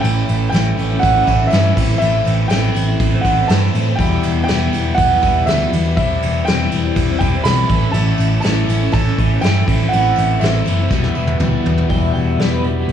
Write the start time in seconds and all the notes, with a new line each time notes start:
Already playing: A3 A4 C#5 E5
0.00 A1 A2 E3 A3 G5, tambourine, crash
0.05 C#4 E4
0.29 A1, crash
0.49 A1 A2 E3 G5, tambourine
0.54 A3 C#4 E4, snare, crash
0.77 A1 E3 A3 C#4 E4, tambourine, crash
0.91 A3 C#4 E4
1.00 A1 F#5, kick, tambourine
1.04 crash
1.15 A3 C#4 E4
1.25 A1 E4, kick, tambourine, crash
1.29 E3 A3 C#4 E4
1.41 A3 C#4 E4
1.47 A2 E5, tambourine
1.52 G2 A2 E3 A3 C#4 E4, snare, crash
1.74 A1 A2 A3 C4 E4 C5, kick, crash
1.78 E3 A3 C4 E4
1.89 A3 C4 E4
1.98 A2 E5, crash
2.02 A1 E3 A3 C4 E4
2.25 A1, tambourine, crash
2.48 A1 A2 E3 A3 G5, snare, tambourine, crash
2.53 C4 E4
2.75 A1 E3 A3 C4 E4, tambourine, crash
2.87 A3 C4 E4
3.00 A1, kick, tambourine, crash
3.12 A3 C4 E4
3.21 A1 F#5, kick, crash
3.25 E3 A3 C4 E4, tambourine
3.38 A3 C4 E4
3.48 G2 A2 E3 A3 C4 E4 A5, snare, tambourine, crash
3.74 A2 E3 A3 C4 E4, tambourine, crash
3.88 A3 C4 E4
3.96 E1 E2 B2 E3 B4 G5, kick, tambourine
4.00 E3 G3 B3 E4 G4, crash
4.23 E1, tambourine, crash
4.44 G5
4.48 E1 E2 B2 E3 G3 B3 E4, snare, tambourine, crash
4.71 E1 E3 G3 B3 E4, tambourine, crash
4.77 E4
4.85 E3 G3 B3 E4
4.94 E1 F#5, kick, tambourine, crash
5.10 E3 G3 B3 E4
5.22 E1 E3 G3 B3 E4, kick, tambourine, crash
5.46 D2 E2 B2 E3 G3 B3 E4 E5, snare, tambourine, crash
5.72 E2 E3 G3 B3 E4, tambourine, crash
5.84 E3 G3 B3 E4
5.96 E1 E3 G3 C4 E4 C5 E5, kick, tambourine, crash
6.22 E1, tambourine, crash
6.45 E1 E3 G3 C4 E4 G5, snare, tambourine, crash
6.71 E1 E3 G3 C4 E4, tambourine, crash
6.84 G3 C4 E4
6.96 E1, kick, tambourine, crash
7.09 G3 C4 E4
7.19 E1 E3 G5, kick, tambourine, crash
7.24 G3 C4 E4
7.33 G3 C4 E4
7.44 B1 E3 G3 C4 E4 B5, snare, tambourine, crash
7.68 A1 E3 A3 C#4 A4 C#5 E5, kick, tambourine, crash
7.72 A2 E4
7.83 A3 C#4 E4
7.92 A1 A2 A5, tambourine, crash
7.96 E3 A3 C#4 E4
8.18 A1, tambourine, crash
8.40 A2 E3 A3 C#4 A5, tambourine, crash
8.44 A1 E4, snare
8.68 A1 E3 A3 C#4 E4, tambourine, crash
8.81 A3 C#4 E4
8.92 A1 A5, kick, tambourine, crash
9.06 A3 C#4 E4
9.18 A1 E3 A3 C#4 E4, kick, crash
9.32 A3 C#4 E4
9.41 G2 A2 E3 G5, snare, tambourine, crash
9.45 A3 C#4 E4
9.65 A1 A2 E3 C4 E4 C5, kick, crash
9.69 A3 C4 E4 E5
9.80 A3 C4 E4
9.89 E3 F#5, tambourine
9.93 A1 A2 A3 C4 E4, crash
10.16 A1, tambourine, crash
10.40 A1 A2 E3 A3 C4 E4 E5, tambourine, crash
10.44 snare
10.66 F#1 E3 A3 C4 E4, tambourine, crash
10.79 A3 C4 E4
10.90 E1 E2 B2 E3 E4 B4 G5, kick, snare, tambourine
10.94 E3 G3 B3 E4
11.04 E4, snare
11.08 E3 G3 B3
11.15 E1 E3 E4, tambourine
11.19 G3 B3 E4
11.27 high tom
11.39 D2 E2, mid tom, tambourine
11.43 E2 B2 E3 G3 B3 E4
11.65 E2 E3 G3 B3 E4, floor tom, tambourine
11.78 E3 G3 B3 E4, floor tom
11.89 E1 E2 B2 E3 E4 G4 B4 G5, kick, open hi-hat
11.93 E3 G3 B3 E4
12.01 E5
12.13 E1 G5, open hi-hat
12.27 E5
12.38 E1 E2 B2 E3 G3 D5, snare, open hi-hat
12.42 B3 E4
12.51 B4
12.64 E1 E3 G3 G4, open hi-hat
12.68 B3 E4
12.78 E3 G3 B3 E4
12.88 B1, open hi-hat